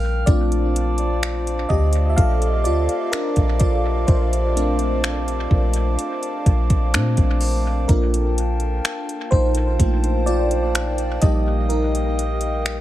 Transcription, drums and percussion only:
0.27 kick loud
0.27 closed hi-hat medium
0.52 closed hi-hat soft
0.76 closed hi-hat medium
0.98 closed hi-hat soft
1.23 finger snap loud
1.23 closed hi-hat medium
1.47 closed hi-hat soft
1.70 kick medium
1.93 closed hi-hat medium
2.18 kick medium
2.18 closed hi-hat medium
2.42 closed hi-hat soft
2.65 closed hi-hat medium
2.89 closed hi-hat soft
3.13 finger snap loud
3.13 closed hi-hat medium
3.36 kick medium
3.36 closed hi-hat soft
3.60 kick medium
3.60 closed hi-hat medium
4.08 kick loud
4.08 closed hi-hat medium
4.33 closed hi-hat medium
4.57 closed hi-hat medium
4.79 closed hi-hat soft
5.04 finger snap loud
5.04 closed hi-hat medium
5.28 closed hi-hat soft
5.51 kick medium
5.73 closed hi-hat medium
5.99 closed hi-hat medium
6.23 closed hi-hat soft
6.46 kick medium
6.46 closed hi-hat soft
6.70 kick medium
6.70 closed hi-hat medium
6.94 finger snap loud
6.94 closed hi-hat medium
7.17 kick medium
7.17 closed hi-hat soft
7.41 open hi-hat medium
7.89 kick loud
7.89 closed hi-hat medium
8.14 closed hi-hat medium
8.38 closed hi-hat medium
8.60 closed hi-hat soft
8.85 finger snap loud
8.85 closed hi-hat medium
9.09 closed hi-hat soft
9.32 kick medium
9.55 closed hi-hat medium
9.79 kick medium
9.79 closed hi-hat medium
10.04 closed hi-hat soft
10.27 closed hi-hat soft
10.51 closed hi-hat medium
10.75 finger snap loud
10.75 closed hi-hat medium
10.98 closed hi-hat soft
11.22 kick loud
11.22 closed hi-hat medium
11.70 closed hi-hat medium
11.95 closed hi-hat soft
12.19 closed hi-hat medium
12.41 closed hi-hat soft
12.66 finger snap loud
12.66 closed hi-hat medium

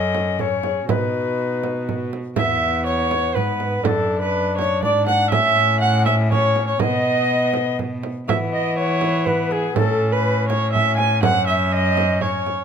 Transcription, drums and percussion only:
0.15 frame drum medium
0.39 frame drum medium
0.63 frame drum soft
0.89 frame drum medium
1.64 frame drum soft
1.89 frame drum soft
2.13 frame drum soft
2.36 frame drum medium
3.11 frame drum medium
3.36 frame drum medium
3.60 frame drum soft
3.85 frame drum medium
4.59 frame drum medium
4.83 frame drum medium
5.07 frame drum soft
5.32 frame drum medium
6.06 frame drum medium
6.32 frame drum medium
6.56 frame drum soft
6.80 frame drum medium
7.54 frame drum medium
7.79 frame drum medium
8.03 frame drum soft
8.29 frame drum medium
9.01 frame drum medium
9.26 frame drum soft
9.51 frame drum soft
9.76 frame drum medium
10.50 frame drum medium
10.75 frame drum medium
10.99 frame drum medium
11.23 frame drum medium
11.97 frame drum medium
12.21 frame drum soft
12.47 frame drum soft

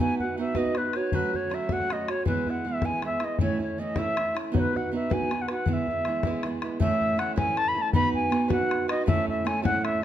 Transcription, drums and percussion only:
0.19 bodhran soft
0.55 bodhran medium
0.66 bodhran soft
0.75 bodhran medium
0.93 bodhran soft
1.12 bodhran medium
1.34 bodhran soft
1.51 bodhran soft
1.69 bodhran medium
1.80 bodhran soft
1.90 bodhran medium
2.08 bodhran medium
2.26 bodhran medium
2.46 bodhran soft
2.82 bodhran medium
2.92 bodhran soft
3.02 bodhran medium
3.20 bodhran medium
3.39 bodhran medium
3.59 bodhran soft
3.96 bodhran medium
4.17 bodhran medium
4.37 bodhran medium
4.55 bodhran medium
4.76 bodhran soft
5.11 bodhran medium
5.22 bodhran soft
5.31 bodhran medium
5.48 bodhran medium
5.66 bodhran medium
5.88 bodhran soft
6.05 bodhran medium
6.23 bodhran medium
6.33 bodhran soft
6.43 bodhran medium
6.62 bodhran medium
6.80 bodhran medium
7.01 bodhran soft
7.19 bodhran medium
7.38 bodhran medium
7.57 bodhran medium
7.93 bodhran medium
8.13 bodhran soft
8.32 bodhran medium
8.50 bodhran medium
8.71 bodhran medium
8.89 bodhran medium
9.08 bodhran medium
9.28 bodhran soft
9.47 bodhran medium
9.65 bodhran medium
9.85 bodhran medium

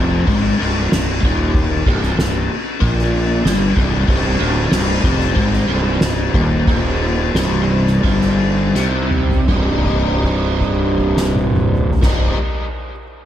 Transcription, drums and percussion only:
0.28 kick loud
0.28 ride loud
0.60 ride medium
0.92 snare loud
0.92 ride loud
1.23 kick loud
1.23 ride medium
1.55 kick loud
1.55 ride medium
1.86 kick loud
1.86 ride medium
2.03 snare soft
2.19 snare loud
2.19 ride loud
2.50 ride medium
2.82 kick loud
2.82 ride loud
2.99 snare soft
3.14 ride medium
3.45 snare loud
3.45 ride medium
3.77 kick loud
3.77 ride medium
4.08 kick loud
4.08 ride loud
4.40 ride medium
4.71 snare loud
4.71 ride loud
5.04 kick loud
5.04 snare soft
5.04 ride medium
5.20 snare soft
5.36 kick loud
5.36 ride loud
5.53 snare soft
5.69 ride medium
6.01 snare loud
6.01 ride loud
6.34 kick loud
6.34 ride medium
6.68 kick loud
6.68 ride loud
7.01 ride medium
7.35 snare loud
7.35 ride loud
7.69 ride medium
7.87 snare soft
8.03 kick loud
8.03 ride medium
8.21 snare soft
8.39 ride medium
8.75 snare medium
9.11 mid tom medium
9.29 floor tom loud
9.48 kick loud
9.48 crash medium
9.85 kick medium
9.85 crash soft
10.05 crash soft
10.23 kick medium
10.23 crash soft
10.43 crash soft
10.61 kick medium
10.61 crash medium
10.79 crash medium
10.98 kick medium
10.98 crash medium
11.17 snare medium
11.36 high tom loud
11.54 mid tom medium
11.73 mid tom loud
11.91 floor tom loud
12.02 kick loud
12.02 snare loud
12.02 crash loud

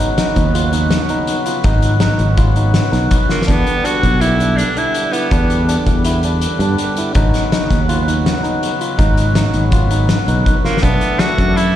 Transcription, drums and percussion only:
0.18 snare loud
0.18 closed hi-hat medium
0.36 kick medium
0.36 closed hi-hat medium
0.55 closed hi-hat medium
0.73 closed hi-hat medium
0.91 snare loud
0.91 closed hi-hat medium
1.09 closed hi-hat soft
1.27 closed hi-hat medium
1.46 closed hi-hat medium
1.64 kick loud
1.64 closed hi-hat medium
1.82 closed hi-hat medium
2.00 snare loud
2.00 closed hi-hat medium
2.19 closed hi-hat soft
2.37 kick medium
2.37 closed hi-hat medium
2.56 closed hi-hat soft
2.74 snare loud
2.74 closed hi-hat medium
2.93 snare soft
2.93 closed hi-hat soft
3.11 kick medium
3.11 closed hi-hat medium
3.29 snare medium
3.42 snare medium
3.48 kick medium
3.48 closed hi-hat medium
3.67 closed hi-hat medium
3.85 closed hi-hat medium
4.03 kick medium
4.03 closed hi-hat soft
4.21 closed hi-hat medium
4.40 closed hi-hat medium
4.58 closed hi-hat medium
4.76 closed hi-hat soft
4.94 closed hi-hat medium
5.13 closed hi-hat medium
5.31 kick medium
5.31 closed hi-hat medium
5.50 closed hi-hat soft
5.69 closed hi-hat medium
5.86 kick medium
5.86 closed hi-hat medium
6.05 closed hi-hat medium
6.23 closed hi-hat medium
6.41 closed hi-hat medium
6.60 closed hi-hat soft
6.78 closed hi-hat medium
6.97 closed hi-hat medium
7.15 kick medium
7.15 closed hi-hat medium
7.34 snare soft
7.34 closed hi-hat medium
7.52 snare medium
7.52 closed hi-hat medium
7.70 kick medium
7.70 snare soft
7.70 closed hi-hat soft
7.89 closed hi-hat medium
8.08 closed hi-hat medium
8.26 snare loud
8.26 closed hi-hat medium
8.44 closed hi-hat soft
8.63 closed hi-hat medium
8.81 closed hi-hat medium
8.99 kick medium
8.99 closed hi-hat medium
9.17 closed hi-hat medium
9.35 snare medium
9.35 closed hi-hat medium
9.54 closed hi-hat soft
9.72 kick medium
9.72 closed hi-hat medium
9.91 closed hi-hat medium
10.09 snare loud
10.09 closed hi-hat medium
10.28 closed hi-hat medium
10.46 kick medium
10.46 closed hi-hat medium
10.65 snare soft
10.77 snare medium
10.83 kick medium
10.83 closed hi-hat medium
11.01 closed hi-hat medium
11.19 snare medium
11.19 closed hi-hat medium
11.38 kick medium
11.38 closed hi-hat medium
11.57 closed hi-hat medium

